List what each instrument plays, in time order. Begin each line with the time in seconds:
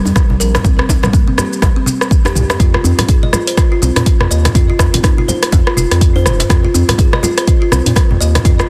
0.05 analog synth bass F2, kalimba G3, djembe tone, shaker
0.16 kick, cross-stick, low conga, shaker
0.30 analog synth bass C2, high conga
0.40 analog synth bass A#1, kalimba A#4, shaker
0.55 cross-stick, mid tom, djembe slap, shaker
0.64 analog synth bass C2, kalimba C4, kick, high conga, shaker
0.79 kalimba C4, cross-stick, high conga
0.89 analog synth bass C2, kick, djembe slap, djembe tone, shaker
1.03 kalimba G3, cross-stick, mid tom, low conga, shaker
1.13 kalimba A#3, kick, djembe tone, shaker
1.28 kalimba C4, high conga
1.38 kalimba G4, cross-stick, low conga, shaker
1.53 shaker
1.62 analog synth bass C2, kick, cross-stick, djembe slap, high conga, shaker
1.76 kalimba C4
1.86 kalimba C4, high conga, shaker
2.01 cross-stick, shaker
2.11 kick, shaker
2.25 kalimba G4, cross-stick, djembe tone, shaker
2.35 analog synth bass C2, kalimba G4, mid tom, shaker
2.50 cross-stick, djembe slap, shaker
2.60 analog synth bass F2, kalimba F4, kick, closed hi-hat, high conga, shaker
2.74 kalimba F4, cross-stick, high conga
2.84 analog synth bass F2, kalimba C4, djembe tone, shaker
2.98 cross-stick, closed hi-hat, mid tom, low conga, shaker
3.08 kalimba G#4, kick, closed hi-hat, djembe tone, shaker
3.23 kalimba D#5, high conga
3.33 kalimba F4, cross-stick, low conga, shaker
3.47 kalimba C5, closed hi-hat, shaker
3.57 kalimba F4, kick, cross-stick, closed hi-hat, shaker
3.72 kalimba F4
3.82 analog synth bass C2, kalimba C4, high conga, shaker
3.96 analog synth bass A#2, kalimba C4, cross-stick, closed hi-hat, djembe tone, shaker
4.06 kick, closed hi-hat, low conga, shaker
4.20 analog synth bass F2, cross-stick, high conga
4.31 analog synth bass D#2, kalimba D#5, shaker
4.45 cross-stick, closed hi-hat, mid tom, djembe slap, shaker
4.55 analog synth bass F2, kalimba F4, kick, closed hi-hat, high conga, shaker
4.69 kalimba F4, high conga
4.79 analog synth bass F2, kick, cross-stick, djembe slap, djembe tone, shaker
4.94 kalimba C4, closed hi-hat, mid tom, low conga, shaker
5.03 kalimba D#4, kick, cross-stick, closed hi-hat, djembe tone, shaker
5.18 kalimba F4, high conga
5.28 kalimba C5, low conga, shaker
5.43 cross-stick, closed hi-hat, shaker
5.52 analog synth bass F2, kick, closed hi-hat, djembe slap, high conga, shaker
5.67 kalimba F4, cross-stick
5.77 analog synth bass F1, kalimba F4, high conga, shaker
5.91 analog synth bass F2, cross-stick, closed hi-hat, shaker
6.01 kick, closed hi-hat, shaker
6.16 kalimba C5, djembe tone
6.26 analog synth bass F1, kalimba C5, cross-stick, mid tom, shaker
6.40 closed hi-hat, djembe slap, shaker
6.49 analog synth bass F2, kalimba F4, kick, cross-stick, closed hi-hat, high conga, shaker
6.64 kalimba F4, high conga
6.74 analog synth bass F2, kalimba C4, djembe tone, shaker
6.89 cross-stick, closed hi-hat, mid tom, low conga, shaker
6.98 kalimba G#4, kick, closed hi-hat, djembe tone, shaker
7.13 kalimba D#5, cross-stick, high conga
7.23 kalimba F4, low conga, shaker
7.37 kalimba C5, cross-stick, closed hi-hat, shaker
7.47 kalimba F4, kick, closed hi-hat, shaker
7.62 kalimba F4
7.72 analog synth bass C2, kalimba C4, cross-stick, high conga, shaker
7.86 analog synth bass A#2, kalimba C4, closed hi-hat, djembe tone, shaker
7.96 kick, cross-stick, closed hi-hat, low conga, shaker
8.11 analog synth bass F2, high conga
8.21 analog synth bass D#2, kalimba D#5, shaker
8.35 cross-stick, closed hi-hat, mid tom, djembe slap, shaker
8.45 analog synth bass F2, kalimba F4, kick, closed hi-hat, high conga, shaker
8.59 kalimba F4, cross-stick, high conga, shaker